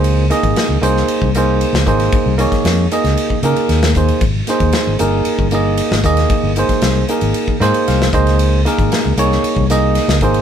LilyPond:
<<
  \new Staff \with { instrumentName = "Tine electric piano" } { \time 4/4 \key des \lydian \tempo 4 = 115 << { r1 | r1 | r1 | r2 r8 aes''8 f''8 ees''8 |
r1 | } \\ { <bes ees' aes' c''>8 <bes ees' aes' ees''>4 <bes ees' aes' c''>4 <bes ees' aes' c''>4 <bes ees' aes' c''>8~ | <bes ees' aes' c''>8 <bes ees' aes' des''>4 <bes ees' aes' ees''>4 <bes ees' aes' bes'>4 <bes ees' aes' c''>8 | r8 <bes ees' aes' c''>4 <bes ees' aes' bes'>4 <bes ees' aes' ees''>4 <bes ees' aes' ees''>8~ | <bes ees' aes' ees''>8 <bes ees' aes' c''>4 <bes ees' aes' bes'>4 <bes ees' aes' c''>4 <bes ees' aes' c''>8~ |
<bes ees' aes' c''>8 <bes ees' aes' bes'>4 <bes ees' aes' des''>4 <bes ees' aes' ees''>4 <bes ees' aes' c''>8 | } >> }
  \new Staff \with { instrumentName = "Fingered electric bass" } { \clef bass \time 4/4 \key des \lydian des,8. aes,,16 r16 des,16 c,8 r16 c,4 des,16 aes,,8 | r16 c,8 r16 f,8 r16 des,16 r8 des16 r16 ees,4 | aes,,8 r16 ees,16 r16 aes,,16 g,,8 r16 g,,4 aes,,16 ees,8 | r16 g,,8 r16 c,8 r16 aes,,16 r8 aes,16 r16 c,8 des,8~ |
des,8. aes,,16 r16 des,16 c,8 r16 c,4 des,16 aes,,8 | }
  \new DrumStaff \with { instrumentName = "Drums" } \drummode { \time 4/4 cymr8 <hhp cymr sn>16 <bd cymr>16 <cymr sn>8 <hhp cymr>16 sn16 cymr16 bd16 <hhp cymr>8 cymr16 sn16 <hhp bd cymr>16 <cymr sn>16 | <bd cymr>8 <hhp cymr>16 <bd cymr sn>16 <cymr sn>8 <hhp cymr>16 <cymr sn>16 cymr16 bd16 <hhp cymr>16 cymr16 <cymr sn>16 sn16 <hhp bd cymr>16 cymr16 | <bd cymr>8 <hhp cymr sn>16 <bd cymr>16 <cymr sn>8 <hhp cymr>8 cymr16 bd16 <hhp cymr>8 cymr16 sn16 <hhp bd cymr>16 <cymr sn>16 | <bd cymr>8 <hhp cymr>16 <bd cymr sn>16 <cymr sn>8 <hhp cymr>16 cymr16 cymr16 bd16 <hhp cymr sn>16 cymr16 <cymr sn>16 sn16 <hhp bd cymr>16 <cymr sn>16 |
cymr8 <hhp cymr sn>16 <bd cymr>16 <cymr sn>8 <hhp cymr>16 sn16 cymr16 bd16 <hhp cymr sn>8 <cymr sn>16 sn16 <hhp bd cymr>16 cymr16 | }
>>